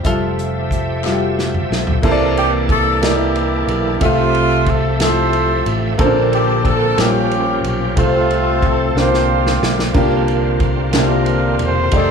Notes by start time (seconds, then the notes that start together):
0.03 F1 F3 G3 A3 F4 F#4 A4 E5, kick, closed hi-hat
0.10 G4
0.39 closed hi-hat
0.71 kick, closed hi-hat
1.03 G3 F4 F#4 E5, snare, clap
1.12 G4
1.39 snare
1.54 mid tom
1.71 B1, snare
1.87 floor tom
2.02 C2 C3 D3 A#3 D4 E4 A4 C5, kick, crash
2.10 E3 D5
2.37 G4, ride bell
2.69 A4, kick, ride bell
3.01 A#3 D#4 E4 G4 A4 D5, snare, ride bell
3.09 E4
3.35 ride bell
3.67 B1 G4, ride bell
3.99 C2 C3 F3 A3 F4 G4 E5, kick, ride bell
4.04 A3
4.35 ride bell
4.66 A4, kick, ride bell
4.99 F3 A3 E4 G4 A4, snare, ride bell
5.03 C5
5.33 ride bell
5.66 A1, ride bell
5.98 A#1 A#2 D3 A#3 C4 A4 C5, kick, ride bell
6.05 D4
6.33 G4, ride bell
6.65 A4, kick, ride bell
6.96 A#1 A#2 F3 G3 A#3 C#4 F4 G4 A#4, snare, ride bell
7.31 ride bell
7.64 B1 G4, ride bell
7.96 C2 C3 F3 A3 C4 F4 A4 C5, kick, ride bell
8.30 ride bell
8.62 A4, kick, ride bell
8.95 C2 D3 A#3 C4 D4 F4 G4 C5, snare
8.99 C5
9.14 snare
9.47 snare
9.62 B1, snare
9.79 snare
9.94 C2 A#3 D4 F4 G4, kick, crash
10.28 ride bell
10.60 kick, ride bell
10.93 C3 A#3 D4 E4 G4, snare, clap, ride bell
10.97 D4 F4 A#4
11.01 F4
11.26 ride bell
11.59 E1, ride bell
11.64 C5
11.91 F1 D#3 G#3 A3 D#4 G4 D5, kick, ride bell
11.97 A3 D#4 A4 C5